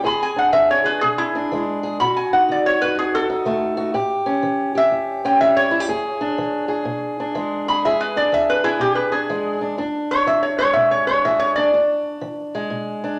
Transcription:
0.04 0.49 E2 medium
0.04 0.83 G#4 medium
0.04 0.21 B5 medium
0.23 0.37 G#5 medium
0.36 1.33 D4 soft
0.36 0.52 F#5 medium
0.53 0.98 E3 medium
0.53 0.69 E5 medium
0.71 0.86 C#5 medium
0.84 1.81 G#4 medium
0.84 1.01 B4 medium
1.01 1.47 B2 medium
1.01 1.17 G#4 medium
1.18 1.65 E4 medium
1.35 1.98 D4 medium
1.52 1.96 E3 medium
1.52 1.98 G#3 medium
1.83 1.97 G#4 medium
2.00 2.45 B2 medium
2.00 2.80 F#4 medium
2.00 2.15 B5 medium
2.16 2.31 G#5 medium
2.33 3.28 D#4 medium
2.33 2.48 F#5 medium
2.49 2.93 D#3 medium
2.49 2.65 D5 medium
2.66 2.81 C#5 medium
2.81 3.76 F#4 medium
2.81 2.96 B4 medium
2.95 3.41 F#2 medium
2.95 3.13 G#4 medium
3.15 3.61 A4 medium
3.30 3.92 D#4 medium
3.45 3.90 D#3 medium
3.45 3.92 A3 medium
3.77 3.92 F#4 medium
3.94 4.39 A2 medium
3.94 4.74 G4 medium
4.26 5.23 C#4 medium
4.42 4.87 E3 medium
4.75 5.71 G4 medium
4.75 5.23 E5 medium
4.91 5.36 E2 medium
5.25 5.87 C#4 medium
5.25 5.40 G5 medium
5.41 5.85 E3 medium
5.41 5.89 G3 medium
5.41 5.56 E5 medium
5.57 6.98 C#5 medium
5.71 5.80 E4 medium
5.80 5.88 G4 medium
5.88 6.33 E2 medium
5.88 6.68 G#4 medium
6.21 7.19 D4 medium
6.38 6.83 E3 medium
6.68 7.69 G#4 medium
6.85 7.30 B2 medium
7.20 7.88 D4 medium
7.35 7.80 E3 medium
7.35 8.19 G#3 medium
7.68 7.85 G#4 medium
7.68 7.83 B5 medium
7.85 8.29 E2 medium
7.85 8.63 G#4 medium
7.85 8.00 E5 medium
8.01 8.15 B4 medium
8.16 9.12 D4 soft
8.16 8.32 D5 medium
8.32 8.77 E3 medium
8.32 8.48 E5 medium
8.50 8.64 B4 medium
8.64 8.80 E4 medium
8.64 9.76 G#4 medium
8.79 9.25 B2 medium
8.79 8.96 G4 medium
8.95 9.11 B4 medium
9.12 9.60 D4 medium
9.12 9.59 G#4 medium
9.29 9.74 E3 soft
9.29 9.76 G#3 medium
9.61 9.76 D4 medium
9.78 10.23 E2 medium
9.78 11.08 D4 medium
10.11 10.26 C#5 medium
10.26 10.72 E3 medium
10.26 10.43 E5 medium
10.43 10.57 C#5 medium
10.59 11.77 G#3 medium
10.59 10.74 C#5 medium
10.73 11.21 B2 medium
10.73 10.90 E5 medium
10.91 11.06 C#5 medium
11.07 11.57 D4 medium
11.07 11.23 C#5 medium
11.25 11.70 E3 medium
11.25 11.77 G#4 medium
11.25 11.40 E5 medium
11.39 11.55 C#5 medium
11.56 11.74 D4 medium
11.56 11.82 D5 medium
11.74 12.19 E2 medium
11.74 13.03 D4 medium
12.21 12.67 E3 medium
12.55 13.19 G#3 medium
12.70 13.16 B2 medium
13.04 13.19 D4 medium

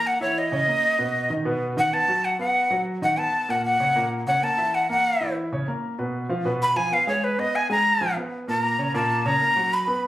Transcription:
0.00 0.16 A#3 medium
0.00 0.16 A#4 medium
0.00 0.16 A#5 medium
0.07 0.21 F#5 medium
0.20 0.46 E3 medium
0.20 0.47 E4 medium
0.20 0.40 C#5 medium
0.20 0.47 E5 medium
0.38 1.31 D#5 medium
0.52 0.65 C#3 medium
0.52 0.65 C#4 medium
0.52 0.65 C#5 medium
0.68 0.93 A#3 medium
0.68 0.94 A#4 medium
0.68 0.94 A#5 medium
0.98 1.24 B2 medium
0.98 1.25 B3 medium
0.98 1.25 B4 medium
1.30 1.43 D#3 medium
1.30 1.43 D#4 medium
1.30 1.43 D#5 medium
1.45 1.71 B2 medium
1.45 1.71 B3 medium
1.45 1.72 B4 medium
1.77 1.90 D#3 medium
1.77 1.90 D#4 medium
1.77 1.90 D#5 medium
1.77 1.95 F#5 medium
1.92 2.06 B3 medium
1.92 2.06 B4 medium
1.92 2.26 A5 medium
1.92 2.06 B5 medium
2.08 2.34 F#3 medium
2.08 2.34 F#4 medium
2.08 2.34 F#5 medium
2.25 2.40 F#5 medium
2.39 2.65 B3 medium
2.39 2.65 B4 medium
2.39 2.84 F#5 medium
2.39 2.66 B5 medium
2.70 2.96 F#3 medium
2.70 2.97 F#4 medium
2.70 2.97 F#5 medium
3.02 3.15 D#3 medium
3.02 3.15 D#4 medium
3.02 3.15 D#5 medium
3.02 3.20 F#5 medium
3.17 3.43 B3 medium
3.17 3.43 B4 medium
3.17 3.52 A5 medium
3.17 3.43 B5 medium
3.48 3.74 A#2 medium
3.48 3.74 A#3 medium
3.48 3.75 A#4 medium
3.48 3.64 F#5 medium
3.65 4.08 F#5 medium
3.80 3.93 C#3 medium
3.80 3.93 C#4 medium
3.80 3.93 C#5 medium
3.95 4.21 A#2 medium
3.95 4.21 A#3 medium
3.95 4.22 A#4 medium
4.27 4.40 C#3 medium
4.27 4.40 C#4 medium
4.27 4.40 C#5 medium
4.27 4.45 F#5 medium
4.42 4.55 A#3 medium
4.42 4.56 A#4 medium
4.42 4.76 A5 medium
4.42 4.56 A#5 medium
4.58 4.84 E3 medium
4.58 4.84 E4 medium
4.58 4.84 E5 medium
4.75 4.90 F#5 medium
4.89 5.15 A#3 medium
4.89 5.15 A#4 medium
4.89 5.34 F#5 medium
4.89 5.15 A#5 medium
5.21 5.46 E3 medium
5.21 5.46 E4 medium
5.21 5.47 E5 medium
5.52 5.65 C#3 medium
5.52 5.65 C#4 medium
5.52 5.65 C#5 medium
5.67 5.93 A#3 medium
5.67 5.93 A#4 medium
5.67 5.93 A#5 medium
5.98 6.24 B2 medium
5.98 6.24 B3 medium
5.98 6.24 B4 medium
6.29 6.42 F3 medium
6.29 6.43 F4 medium
6.29 6.43 F5 medium
6.45 6.71 B2 medium
6.45 6.71 B3 medium
6.45 6.71 B4 medium
6.63 6.78 B5 loud
6.76 6.89 F3 medium
6.76 6.89 F4 medium
6.76 6.89 F5 medium
6.76 6.95 G#5 medium
6.92 7.05 B3 medium
6.92 7.05 B4 medium
6.92 7.08 F5 medium
6.92 7.05 B5 medium
7.07 7.33 G#3 medium
7.07 7.33 G#4 medium
7.07 7.25 C#5 medium
7.07 7.33 G#5 medium
7.24 7.41 B4 medium
7.38 7.64 B3 medium
7.38 7.64 B4 medium
7.38 7.57 D#5 medium
7.38 7.64 B5 medium
7.55 7.71 G#5 medium
7.70 7.95 G#3 medium
7.70 7.95 G#4 medium
7.70 7.96 G#5 medium
7.70 8.14 A#5 loud
8.01 8.14 F3 medium
8.01 8.14 F4 medium
8.01 8.14 F5 medium
8.17 8.42 B3 medium
8.17 8.42 B4 medium
8.17 8.43 B5 medium
8.48 8.73 A#2 medium
8.48 8.73 A#3 medium
8.48 8.74 A#4 medium
8.48 8.92 A#5 medium
8.78 8.92 C#3 medium
8.78 8.92 C#4 medium
8.78 8.92 C#5 medium
8.94 9.20 A#2 medium
8.94 9.20 A#3 medium
8.94 9.20 A#4 loud
8.94 9.28 A5 medium
9.25 9.38 C#3 medium
9.25 9.38 C#4 medium
9.25 9.39 C#5 medium
9.25 9.75 A#5 loud
9.41 9.54 A#3 medium
9.41 9.54 A#4 medium
9.41 9.54 A#5 medium
9.56 9.82 F#3 medium
9.56 9.82 F#4 medium
9.56 9.83 F#5 medium
9.74 10.04 B5 medium
9.87 10.07 B3 medium
9.87 10.07 B4 medium
9.87 10.07 B5 medium

